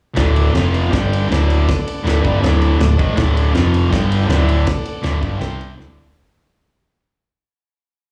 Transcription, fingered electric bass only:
0.17 0.52 D1 medium
0.53 0.89 F1 loud
0.93 1.28 G1 loud
1.30 1.65 D1 medium
2.04 2.22 D1 loud
2.24 2.41 G1 medium
2.42 2.77 D1 loud
2.80 2.97 D1 medium
2.99 3.16 G#1 loud
3.18 3.52 D1 loud
3.56 3.90 F1 loud
3.92 4.27 G1 loud
4.29 4.64 D1 loud
5.04 5.21 D1 medium
5.23 5.40 G1 medium
5.40 5.75 C2 loud
5.78 6.13 D1 loud

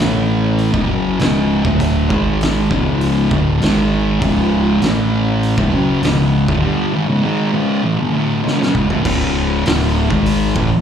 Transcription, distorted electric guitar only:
0.00 0.72 A2 medium
0.00 0.73 E3 medium
0.00 0.73 A3 loud
0.73 0.87 C#2 medium
0.73 0.88 G#2 medium
0.88 1.18 F#2 medium
0.88 1.18 C#3 medium
0.88 1.18 F#3 medium
1.19 1.63 C#2 medium
1.19 1.64 G#2 medium
1.19 1.64 C#3 loud
1.64 2.09 D2 medium
1.64 2.09 A2 medium
1.64 2.09 D3 loud
2.09 2.69 G#2 medium
2.09 2.69 D#3 medium
2.09 2.70 G#3 medium
2.70 3.30 C#2 medium
2.70 3.30 G#2 medium
2.70 3.31 C#3 loud
3.30 3.60 D2 loud
3.30 3.60 A2 medium
3.30 3.60 D3 loud
3.60 4.20 G#2 medium
3.60 4.21 D#3 medium
3.60 4.21 G#3 medium
4.21 4.81 C#2 medium
4.21 4.81 G#2 loud
4.21 4.81 C#3 loud
4.81 5.56 A2 medium
4.81 5.57 E3 medium
4.81 5.57 A3 medium
5.57 5.72 C#2 medium
5.57 5.72 G#2 loud
5.72 6.02 F#2 loud
5.72 6.02 C#3 medium
5.72 6.02 F#3 medium
6.02 6.47 C#2 medium
6.02 6.48 G#2 medium
6.02 6.48 C#3 loud
6.48 6.62 D2 medium
6.48 6.63 A2 medium
6.62 6.92 G2 medium
6.62 6.93 D3 medium
6.62 6.93 G3 loud
6.93 7.07 G#2 medium
6.93 7.08 D#3 medium
7.08 7.22 C#2 medium
7.08 7.21 G#2 medium
7.23 7.53 G#2 medium
7.23 7.53 D#3 medium
7.23 7.53 G#3 medium
7.53 7.82 C#2 medium
7.53 7.83 G#2 medium
7.53 7.84 C#3 medium
7.83 7.98 A2 medium
7.83 7.98 E3 medium
7.98 8.13 G2 medium
7.98 8.13 D3 medium
8.13 8.43 D2 medium
8.13 8.43 A2 loud
8.13 8.44 D3 medium
8.44 8.58 C#2 medium
8.44 8.59 G#2 medium
8.59 8.73 F#2 medium
8.59 8.74 C#3 loud
8.74 8.88 C#2 medium
8.74 8.89 G#2 medium
8.89 9.03 D2 medium
8.89 9.04 A2 medium
9.04 9.64 C#2 loud
9.04 9.64 G#2 loud
9.04 9.64 C#3 loud
9.64 10.09 D2 medium
9.64 10.09 A2 medium
9.64 10.09 D3 medium
10.09 10.54 G#2 medium
10.09 10.54 D#3 medium
10.09 10.55 G#3 loud
10.54 10.69 A2 medium
10.54 10.69 E3 loud

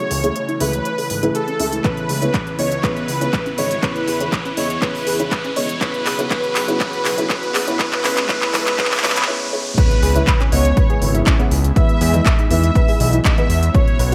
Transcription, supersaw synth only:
0.00 0.51 C#5 loud
0.60 1.25 B4 loud
1.35 1.80 A4 medium
1.85 2.49 B4 loud
2.59 2.82 C#5 medium
2.84 3.48 B4 loud
3.58 3.81 C#5 medium
3.83 4.48 B4 loud
4.57 4.80 C#5 medium
4.82 5.47 B4 loud
5.56 5.79 C#5 loud
5.81 6.29 B4 loud
6.31 6.78 B4 loud
6.80 7.28 B4 loud
7.30 7.78 B4 loud
7.79 8.02 B4 loud
8.04 8.27 B4 loud
8.29 8.52 B4 loud
8.54 8.77 B4 loud
8.78 9.01 B4 loud
9.03 9.26 B4 loud
9.78 10.43 B4 loud
10.52 11.17 C#5 loud
11.76 12.41 E5 loud
12.51 13.15 E5 loud
13.25 13.70 E5 loud
13.75 14.15 C#5 loud

